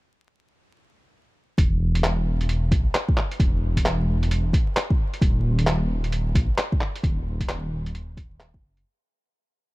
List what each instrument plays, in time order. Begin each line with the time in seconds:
1.58 detuned saw bass E1, kick, closed hi-hat
1.95 closed hi-hat
2.04 clap, closed hi-hat
2.26 detuned saw bass E1
2.41 closed hi-hat
2.49 closed hi-hat
2.71 detuned saw bass B1, kick, closed hi-hat
2.95 clap, closed hi-hat
3.09 kick
3.17 clap
3.31 closed hi-hat
3.40 detuned saw bass E1, kick, closed hi-hat
3.77 kick, closed hi-hat
3.86 clap, closed hi-hat
4.08 detuned saw bass E1
4.23 closed hi-hat
4.31 closed hi-hat
4.53 kick, closed hi-hat
4.77 clap, closed hi-hat
4.90 kick
5.14 closed hi-hat
5.22 detuned saw bass D#1, kick, closed hi-hat
5.59 closed hi-hat
5.67 clap, closed hi-hat
5.89 detuned saw bass D#1
6.04 closed hi-hat
6.12 closed hi-hat
6.35 detuned saw bass A#1, kick, closed hi-hat
6.58 clap, closed hi-hat
6.72 kick
6.81 clap
6.96 closed hi-hat
7.03 detuned saw bass D#1, kick, closed hi-hat
7.41 kick, closed hi-hat
7.49 clap, closed hi-hat
7.72 detuned saw bass D#1
7.86 closed hi-hat
7.95 closed hi-hat
8.17 detuned saw bass D#1, kick, closed hi-hat
8.40 clap, closed hi-hat
8.54 detuned saw bass F#1, kick
8.77 closed hi-hat